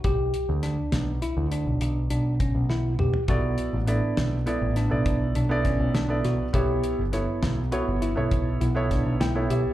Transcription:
<<
  \new Staff \with { instrumentName = "Grand piano" } { \time 11/8 \key b \minor \tempo 4 = 102 << { r1 r4. | r1 r4. | r1 r8 g''8 e''8 | } \\ { r1 r4. | <b e' a' d''>8. r16 <b e' a' d''>8. r16 <b e' a' d''>8 r16 <b e' a' d''>8. r16 <b e' a' d''>8. r16 <b e' a' d''>8 r16 | <b e' a' cis''>8. r16 <b e' a' cis''>8. r16 <b e' a' cis''>8 r16 <b e' a' cis''>8. r16 <b e' a' cis''>8. r16 <b e' a' cis''>8 r16 | } >> }
  \new Staff \with { instrumentName = "Tine electric piano" } { \time 11/8 \key b \minor g'4 d'4 e'8 d'4 d'8 cis'8 e'8 g'8 | fis'4 d'4 e'8 d'4 d'8 cis'8 d'8 fis'8 | g'4 e'4 fis'8 e'4 e'8 d'8 e'8 g'8 | }
  \new Staff \with { instrumentName = "Picked electric bass" } { \clef bass \time 11/8 \key b \minor b,,8 r16 d,8 r16 b,,8 r16 d,8 b,,16 b,,8 b,,8. b,,8. b,,16 r16 | b,,8 r16 a,,8 r16 b,,8 r16 a,,8 b,,8. b,,8. b,,8. b,,16 r16 | b,,8 r16 g,,8 r16 b,,8 r16 g,,8 b,,8. b,,8. b,,8. b,,16 r16 | }
  \new DrumStaff \with { instrumentName = "Drums" } \drummode { \time 11/8 <hh bd>8 hh8 <hh sn>8 <hh sn>8 hh8 hh8 hh8 hh8 <hh bd>8 sn8 toml16 tomfh16 | <hh bd>8 hh8 hh8 <hh sn>8 hh8 <hh sn>8 <hh bd>8 hh8 <hh bd sn>8 <hh sn>8 <hh sn>8 | <hh bd>8 hh8 <hh sn>8 <hh sn>8 hh8 hh8 <hh bd>8 hh8 <hh bd sn>8 <hh sn>8 hh8 | }
>>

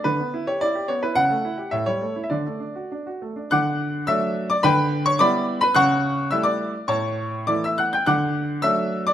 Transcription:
<<
  \new Staff \with { instrumentName = "Grand piano" } { \time 2/4 \key d \major \tempo 4 = 107 b'8. cis''16 d''8 cis''16 b'16 | fis''4 e''16 cis''8~ cis''32 e''32 | d''4 r4 | <fis'' d''' fis'''>4 <e'' e'''>8. <d'' d'''>16 |
<b' g'' b''>8. <cis'' cis'''>16 <d'' b'' d'''>8. <b' b''>16 | <fis'' cis''' fis'''>4 <e'' e'''>16 <d'' d'''>8. | <cis'' a'' cis'''>4 <d'' d'''>16 <e'' e'''>16 <fis'' fis'''>16 <g'' g'''>16 | <fis'' d''' fis'''>4 <e'' e'''>8. <d'' d'''>16 | }
  \new Staff \with { instrumentName = "Grand piano" } { \time 2/4 \key d \major d16 b16 e'16 g'16 e'16 g'16 b16 e'16 | cis16 a16 e'16 g'16 a,16 g16 a16 e'16 | d16 a16 d'16 fis'16 d'16 fis'16 a16 d'16 | d4 <fis a d'>4 |
d4 <g b e'>4 | cis4 <g a e'>4 | a,4 <e a e'>4 | d4 <fis a d'>4 | }
>>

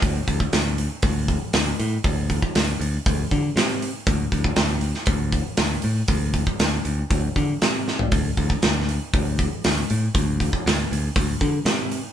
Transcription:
<<
  \new Staff \with { instrumentName = "Picked electric bass" } { \clef bass \time 4/4 \key c \mixolydian \tempo 4 = 119 d,8 d,8 d,4 d,4 d,8 a,8 | d,4 d,8 d,8 d,8 d8 c4 | d,8 d,8 d,4 d,4 d,8 a,8 | d,4 d,8 d,8 d,8 d8 c4 |
d,8 d,8 d,4 d,4 d,8 a,8 | d,4 d,8 d,8 d,8 d8 c4 | }
  \new DrumStaff \with { instrumentName = "Drums" } \drummode { \time 4/4 <hho bd>8 <hho bd>16 bd16 <hho sn>8 hho8 <hho bd>8 <hho bd>8 <hho sn>8 hho8 | <hho bd>8 <hho bd>16 bd16 <hho sn>8 hho8 <hho bd>8 <hho bd>8 <hho sn>8 hho8 | <hho bd>8 <hho bd>16 bd16 <hho sn>8 hho16 sn16 <hho bd>8 <hho bd>8 <hho sn>8 hho8 | <hho bd>8 <hho bd>16 bd16 <hho sn>8 hho8 <hho bd>8 <hho bd>8 <hho sn>8 sn16 tomfh16 |
<hho bd>8 <hho bd>16 bd16 <hho sn>8 hho8 <hho bd>8 <hho bd>8 <hho sn>8 hho8 | <hho bd>8 <hho bd>16 bd16 <hho sn>8 hho8 <hho bd>8 <hho bd>8 <hho sn>8 hho8 | }
>>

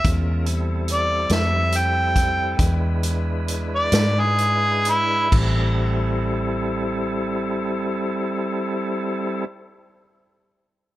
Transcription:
<<
  \new Staff \with { instrumentName = "Harmonica" } { \time 12/8 \key a \minor \tempo 4. = 42 r4 d''8 e''8 g''4 r4 r16 d''8 gis'8. e'8 | r1. | }
  \new Staff \with { instrumentName = "Tonewheel organ" } { \time 12/8 \key a \minor <gis cis' f' bes'>8 <g c' e' a'>2~ <g c' e' a'>8 <gis d' e' b'>2. | <g c' e' a'>1. | }
  \new Staff \with { instrumentName = "Fingered electric bass" } { \clef bass \time 12/8 \key a \minor e,4. f,4. e,4. gis,4. | a,,1. | }
  \new DrumStaff \with { instrumentName = "Drums" } \drummode { \time 12/8 <hh bd>8 hh8 hh8 <hh sn>8 hh8 <hh bd>8 <hh bd>8 hh8 hh8 <hh sn>8 hh8 hh8 | <cymc bd>4. r4. r4. r4. | }
>>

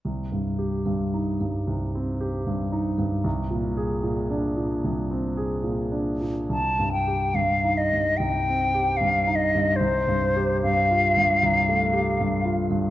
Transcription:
<<
  \new Staff \with { instrumentName = "Flute" } { \time 4/4 \key c \minor \tempo 4 = 75 r1 | r1 | a''8 g''8 f''8 ees''8 g''4 f''8 ees''8 | c''4 f''2~ f''8 r8 | }
  \new Staff \with { instrumentName = "Grand piano" } { \clef bass \time 4/4 \key c \minor \tuplet 3/2 { c,8 g,8 g'8 g,8 ees'8 g,8 c,8 c'8 g'8 g,8 ees'8 g,8 } | \tuplet 3/2 { c,8 bes,8 aes'8 bes,8 d'8 bes,8 c,8 c'8 aes'8 bes,8 d'8 bes,8 } | \tuplet 3/2 { c,8 g,8 g'8 g,8 ees'8 g,8 c,8 c'8 g'8 g,8 ees'8 g,8 } | \tuplet 3/2 { c,8 g,8 g'8 g,8 f'8 g,8 c,8 a8 g'8 g,8 f'8 g,8 } | }
>>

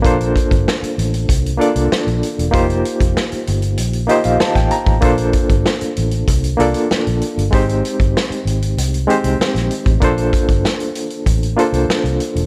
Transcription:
<<
  \new Staff \with { instrumentName = "Reed electric piano" } { \time 4/4 \key bes \major \tempo 4 = 96 << { r1 | r2 r8 ees''16 f''16 a''16 g''16 bes''8 | r1 | r1 |
r1 | } \\ { <bes d' f' a' c''>4. r4 <bes d' f' a' d''>4 r8 | <bes ees' f' g' c''>4. r4 <bes ees' f' g' c''>4 r8 | <bes d' f' a' c''>4. r4 <bes d' f' a' d''>4 r8 | <aes c' ees' g' c''>4. r4 <aes c' ees' g' c''>4 r8 |
<bes d' f' a' c''>4. r4 <bes d' f' a' c''>4 r8 | } >> }
  \new Staff \with { instrumentName = "Fingered electric bass" } { \clef bass \time 4/4 \key bes \major bes,,8 r16 g,,16 r8 a,,8 c,8 r16 c,16 r16 bes,,16 r16 e,,16 | f,,8 r16 f,,16 r8 g,,8 bes,,8 r16 bes,,16 r16 a,,16 r16 a,,16 | bes,,8 r16 g,,16 r8 a,,8 c,8 c,16 r8 bes,,16 r16 g,,16 | aes,,8 r16 g,,16 r8 aes,,8 c,8 r16 c,16 r16 bes,,16 r16 a,,16 |
bes,,8 r16 g,,16 r4 a,,8 r16 c,16 r16 c,16 r16 e,,16 | }
  \new DrumStaff \with { instrumentName = "Drums" } \drummode { \time 4/4 <hh bd>16 hh16 <hh bd>16 <hh bd>16 sn16 hh16 hh16 hh16 <hh bd>16 hh16 hh16 hh16 sn16 hh16 hh16 hh16 | <hh bd>16 hh16 hh16 <hh bd>16 sn16 hh16 hh16 hh16 hh16 hh16 hh16 hh16 sn16 <hh bd sn>16 hh16 <hh bd>16 | <hh bd>16 hh16 <hh bd>16 <hh bd>16 sn16 hh16 hh16 hh16 <hh bd>16 hh16 hh16 hh16 sn16 hh16 hh16 hh16 | <hh bd>16 hh16 hh16 <hh bd>16 sn16 hh16 hh16 hh16 hh16 hh16 hh16 hh16 sn16 <hh sn>16 hh16 <hh bd>16 |
<hh bd>16 hh16 <hh bd>16 <hh bd>16 sn16 hh16 hh16 hh16 <hh bd>16 hh16 hh16 hh16 sn16 hh16 hh16 hh16 | }
>>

